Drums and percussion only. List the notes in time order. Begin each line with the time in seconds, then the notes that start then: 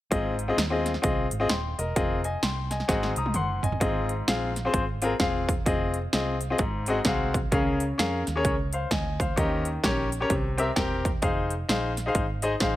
0.12 kick, closed hi-hat
0.39 closed hi-hat
0.58 snare, closed hi-hat
0.86 snare, closed hi-hat
0.94 snare
1.03 kick, closed hi-hat
1.31 closed hi-hat
1.49 snare, closed hi-hat
1.79 closed hi-hat
1.96 kick, closed hi-hat
2.24 closed hi-hat
2.43 snare, closed hi-hat
2.71 snare, closed hi-hat
2.80 snare
2.89 kick, snare, closed hi-hat
3.03 snare
3.16 closed hi-hat
3.26 high tom
3.34 closed hi-hat, mid tom
3.63 closed hi-hat, floor tom
3.72 floor tom
3.81 kick, closed hi-hat
4.09 closed hi-hat
4.28 snare, closed hi-hat
4.56 snare, closed hi-hat
4.74 kick, closed hi-hat
5.02 closed hi-hat
5.20 kick, snare, closed hi-hat
5.49 kick, closed hi-hat
5.66 kick, closed hi-hat
5.94 closed hi-hat
6.13 snare, closed hi-hat
6.41 closed hi-hat
6.58 kick, closed hi-hat
6.86 closed hi-hat
7.05 kick, snare, closed hi-hat
7.34 kick, closed hi-hat
7.52 kick, closed hi-hat
7.80 closed hi-hat
7.99 snare, closed hi-hat
8.27 snare, closed hi-hat
8.45 kick, closed hi-hat
8.73 closed hi-hat
8.91 kick, snare, closed hi-hat
9.20 kick, closed hi-hat
9.37 kick, closed hi-hat
9.65 closed hi-hat
9.84 kick, snare, closed hi-hat
10.12 closed hi-hat
10.30 kick, closed hi-hat
10.58 closed hi-hat
10.76 kick, snare, closed hi-hat
11.05 kick, closed hi-hat
11.22 kick, closed hi-hat
11.50 closed hi-hat
11.69 snare, closed hi-hat
11.97 snare, closed hi-hat
12.15 kick, closed hi-hat
12.42 closed hi-hat
12.60 kick, snare, closed hi-hat